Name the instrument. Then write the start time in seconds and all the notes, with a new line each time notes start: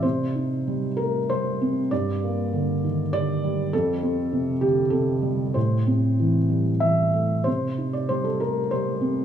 felt piano
0.03 C3 C5
0.36 D#4
0.67 G3
0.97 A3 A#4
1.30 G3 C5
1.61 C4
1.91 G2 D5
2.23 A#3
2.53 D3
2.84 D#3
3.13 D3 D5
3.44 G3
3.73 F2 A4
4.03 C4
4.33 C3
4.61 D3 G4
4.90 C3 A4
5.22 G3
5.54 A2 C5
5.87 C4
6.20 E3
6.49 G3
6.80 E3 E5
7.14 A3
7.44 C3 C5
7.78 D#4
7.93 D5
8.09 G3 C5
8.24 A4
8.40 A3 A#4
8.71 G3 C5
9.01 C4